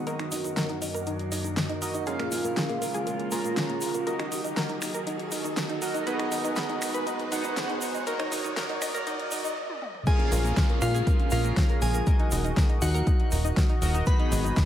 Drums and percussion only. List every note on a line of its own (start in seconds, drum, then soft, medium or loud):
0.07 closed hi-hat medium
0.07 shaker soft
0.19 finger snap medium
0.19 closed hi-hat soft
0.32 open hi-hat loud
0.32 shaker medium
0.44 closed hi-hat soft
0.44 shaker medium
0.57 snare loud
0.57 closed hi-hat medium
0.57 shaker soft
0.69 closed hi-hat soft
0.82 open hi-hat loud
0.82 shaker medium
0.94 closed hi-hat soft
0.94 shaker medium
1.07 closed hi-hat medium
1.07 shaker soft
1.19 closed hi-hat soft
1.32 open hi-hat loud
1.32 shaker loud
1.44 closed hi-hat soft
1.44 shaker soft
1.57 snare loud
1.57 closed hi-hat medium
1.57 shaker soft
1.69 closed hi-hat soft
1.82 open hi-hat loud
1.82 shaker medium
1.94 closed hi-hat soft
1.94 shaker medium
2.07 closed hi-hat medium
2.07 shaker soft
2.19 finger snap medium
2.19 closed hi-hat soft
2.32 open hi-hat loud
2.32 shaker medium
2.44 closed hi-hat soft
2.44 shaker medium
2.57 snare loud
2.57 closed hi-hat medium
2.57 shaker soft
2.69 closed hi-hat soft
2.82 open hi-hat loud
2.82 shaker medium
2.94 closed hi-hat soft
2.94 shaker soft
3.07 closed hi-hat medium
3.07 shaker soft
3.20 closed hi-hat soft
3.31 open hi-hat loud
3.31 shaker medium
3.44 closed hi-hat soft
3.44 shaker medium
3.57 snare loud
3.57 closed hi-hat medium
3.57 shaker soft
3.69 closed hi-hat soft
3.81 open hi-hat loud
3.81 shaker medium
3.94 closed hi-hat soft
3.94 shaker soft
4.07 closed hi-hat medium
4.07 shaker soft
4.19 finger snap medium
4.19 closed hi-hat soft
4.32 open hi-hat loud
4.32 shaker medium
4.44 closed hi-hat soft
4.44 shaker soft
4.57 snare loud
4.57 closed hi-hat medium
4.57 shaker soft
4.69 closed hi-hat soft
4.82 finger snap medium
4.82 open hi-hat loud
4.82 shaker medium
4.94 shaker medium
5.07 closed hi-hat medium
5.07 shaker soft
5.19 closed hi-hat soft
5.31 open hi-hat loud
5.31 shaker medium
5.44 closed hi-hat soft
5.44 shaker soft
5.57 snare loud
5.57 closed hi-hat medium
5.57 shaker soft
5.69 closed hi-hat soft
5.82 open hi-hat loud
5.82 shaker medium
5.94 closed hi-hat soft
5.94 shaker soft
6.07 closed hi-hat medium
6.07 shaker soft
6.19 finger snap medium
6.19 closed hi-hat soft
6.32 open hi-hat loud
6.32 shaker medium
6.44 closed hi-hat soft
6.44 shaker soft
6.56 snare loud
6.56 closed hi-hat medium
6.56 shaker soft
6.70 closed hi-hat soft
6.82 finger snap medium
6.82 open hi-hat loud
6.82 shaker medium
6.94 closed hi-hat soft
6.94 shaker medium
7.07 closed hi-hat medium
7.07 shaker soft
7.19 closed hi-hat soft
7.32 open hi-hat loud
7.32 shaker medium
7.44 closed hi-hat soft
7.44 shaker medium
7.57 snare loud
7.57 closed hi-hat medium
7.57 shaker soft
7.70 closed hi-hat soft
7.81 open hi-hat loud
7.81 shaker medium
7.95 closed hi-hat soft
7.95 shaker soft
8.07 closed hi-hat medium
8.07 shaker soft
8.20 finger snap medium
8.20 closed hi-hat soft
8.32 open hi-hat loud
8.32 shaker medium
8.45 closed hi-hat soft
8.45 shaker medium
8.57 snare loud
8.57 closed hi-hat medium
8.57 shaker soft
8.69 closed hi-hat soft
8.82 finger snap medium
8.82 open hi-hat loud
8.82 shaker loud
8.94 closed hi-hat soft
8.94 shaker medium
9.07 closed hi-hat medium
9.07 shaker soft
9.19 closed hi-hat soft
9.31 open hi-hat loud
9.31 shaker medium
9.44 closed hi-hat soft
9.44 shaker medium
9.70 high tom medium
9.82 mid tom medium
9.95 mid tom medium
10.07 kick loud
10.07 closed hi-hat medium
10.07 shaker soft
10.20 closed hi-hat soft
10.32 open hi-hat loud
10.32 shaker loud
10.45 closed hi-hat soft
10.45 shaker soft
10.57 kick loud
10.57 snare loud
10.57 closed hi-hat medium
10.57 shaker soft
10.70 closed hi-hat soft
10.82 finger snap medium
10.82 open hi-hat loud
10.82 shaker medium
10.95 closed hi-hat soft
10.95 shaker medium
11.07 kick loud
11.07 closed hi-hat medium
11.07 shaker soft
11.19 closed hi-hat soft
11.31 open hi-hat loud
11.31 shaker medium
11.44 closed hi-hat soft
11.44 shaker medium
11.57 kick loud
11.57 snare loud
11.57 closed hi-hat medium
11.57 shaker soft
11.70 closed hi-hat soft
11.82 open hi-hat loud
11.82 shaker medium
11.94 closed hi-hat soft
11.94 shaker medium
12.07 kick loud
12.07 closed hi-hat medium
12.07 shaker soft
12.20 closed hi-hat soft
12.31 open hi-hat loud
12.31 shaker loud
12.45 closed hi-hat soft
12.45 shaker soft
12.57 kick loud
12.57 snare loud
12.57 closed hi-hat medium
12.57 shaker soft
12.70 closed hi-hat soft
12.82 open hi-hat loud
12.82 shaker loud
12.95 closed hi-hat soft
12.95 shaker medium
13.07 kick loud
13.07 closed hi-hat medium
13.07 shaker soft
13.20 closed hi-hat soft
13.31 open hi-hat loud
13.31 shaker medium
13.45 shaker medium
13.57 kick loud
13.57 snare loud
13.57 closed hi-hat medium
13.57 shaker soft
13.70 closed hi-hat soft
13.82 open hi-hat loud
13.82 shaker medium
13.94 closed hi-hat soft
13.94 shaker soft
14.06 kick loud
14.06 closed hi-hat medium
14.06 shaker soft
14.20 closed hi-hat soft
14.32 open hi-hat loud
14.32 shaker loud
14.45 shaker medium
14.57 kick loud
14.57 snare loud
14.57 closed hi-hat medium
14.57 shaker soft